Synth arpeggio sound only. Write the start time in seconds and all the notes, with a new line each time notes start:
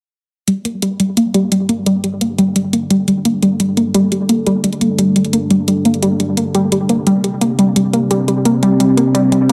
0.48 G3
0.65 A#3
0.82 G3
1.00 G3
1.17 A#3
1.34 G3
1.52 G3
1.69 A#3
1.86 G3
2.04 G3
2.21 A#3
2.38 G3
2.56 G3
2.73 A#3
2.90 G3
3.08 G3
3.25 A#3
3.42 G3
3.60 G3
3.77 A#3
3.94 G3
4.12 G3
4.29 A#3
4.47 G3
4.64 G3
4.81 A#3
4.99 G3
5.16 G3
5.33 A#3
5.50 G3
5.68 G3
5.85 A#3
6.02 G3
6.20 G3
6.37 A#3
6.55 G3
6.72 G3
6.89 A#3
7.07 G3
7.24 G3
7.41 A#3
7.59 G3
7.76 G3
7.93 A#3
8.11 G3
8.28 G3
8.45 A#3
8.63 G3
8.80 G3
8.97 A#3
9.15 G3
9.32 G3